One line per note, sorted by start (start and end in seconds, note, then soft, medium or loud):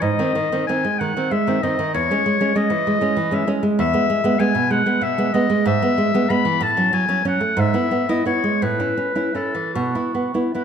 0.01 0.18 G#2 medium
0.01 0.66 D#5 loud
0.19 0.34 D#3 medium
0.19 0.34 C4 medium
0.35 0.51 D#3 medium
0.52 0.67 D#3 medium
0.52 0.67 C4 medium
0.67 0.83 D#3 medium
0.67 0.84 C4 medium
0.67 1.01 G#5 medium
0.85 1.10 G#3 medium
0.99 1.15 D#3 medium
0.99 1.33 F#5 loud
1.17 1.31 D#3 soft
1.17 1.31 C4 medium
1.31 1.57 G#3 medium
1.31 1.64 E5 medium
1.47 1.61 D#3 medium
1.47 1.62 C4 medium
1.63 1.77 D#3 medium
1.63 1.77 C4 medium
1.63 1.94 D#5 medium
1.79 1.94 D#3 medium
1.94 2.09 E2 medium
1.94 2.57 C#5 loud
2.11 2.24 G#3 medium
2.11 2.25 C#4 medium
2.26 2.39 G#3 medium
2.40 2.54 G#3 medium
2.40 2.54 C#4 medium
2.56 2.70 G#3 medium
2.56 2.70 C#4 medium
2.56 3.35 D#5 loud
2.70 2.95 E3 medium
2.87 3.00 G#3 medium
3.01 3.16 G#3 medium
3.01 3.16 C#4 medium
3.17 3.42 E3 medium
3.31 3.46 G#3 medium
3.31 3.46 C#4 medium
3.31 3.49 E5 medium
3.47 3.62 G#3 medium
3.47 3.62 C#4 medium
3.63 3.79 G#3 medium
3.79 3.94 E2 medium
3.79 4.41 E5 loud
3.93 4.08 G#3 medium
3.93 4.08 B3 medium
4.10 4.23 G#3 medium
4.24 4.38 G#3 medium
4.24 4.38 B3 medium
4.39 4.54 G#3 medium
4.39 4.54 B3 medium
4.39 4.72 G#5 loud
4.55 4.80 B2 medium
4.70 4.85 G#3 medium
4.70 5.05 F#5 loud
4.86 5.01 G#3 medium
4.86 5.01 B3 medium
5.01 5.27 B2 medium
5.01 5.35 E5 loud
5.18 5.33 G#3 medium
5.18 5.33 B3 medium
5.34 5.48 G#3 medium
5.34 5.49 B3 medium
5.34 5.66 D#5 loud
5.50 5.66 G#3 medium
5.66 5.81 G#2 medium
5.66 6.31 E5 loud
5.82 5.97 G#3 medium
5.82 5.97 B3 medium
5.98 6.13 G#3 medium
6.14 6.29 G#3 medium
6.14 6.29 B3 medium
6.30 6.44 G#3 medium
6.30 6.44 B3 medium
6.30 6.64 B5 loud
6.45 6.61 E3 medium
6.60 6.76 A2 medium
6.60 6.95 A5 loud
6.77 6.92 F#3 medium
6.77 6.92 C#4 medium
6.93 7.07 F#3 medium
6.93 7.26 G#5 loud
7.08 7.24 F#3 medium
7.08 7.24 C#4 medium
7.25 7.40 F#3 medium
7.25 7.40 C#4 medium
7.25 7.61 F#5 medium
7.41 7.58 A3 medium
7.57 7.74 G#2 medium
7.57 8.12 E5 loud
7.74 7.90 B3 medium
7.74 7.90 E4 medium
7.91 8.08 B3 medium
8.09 8.25 B3 medium
8.09 8.25 E4 medium
8.09 8.26 D#5 medium
8.26 8.42 B3 medium
8.26 8.42 E4 medium
8.26 8.64 C#5 medium
8.44 8.61 G#3 medium
8.62 8.79 A2 medium
8.62 9.36 B4 medium
8.80 8.96 C#4 soft
8.80 8.96 E4 medium
8.97 9.14 C#4 medium
9.15 9.33 C#4 soft
9.15 9.33 E4 soft
9.35 9.52 C#4 soft
9.35 9.53 E4 soft
9.35 9.73 A4 medium
9.55 9.74 E3 soft
9.74 9.94 B2 medium
9.74 10.37 F#4 medium
9.95 10.13 B3 soft
9.95 10.13 E4 medium
10.15 10.33 B3 soft
10.34 10.52 B3 soft
10.34 10.52 E4 soft
10.54 10.64 B3 soft
10.54 10.64 E4 soft
10.54 10.64 B4 medium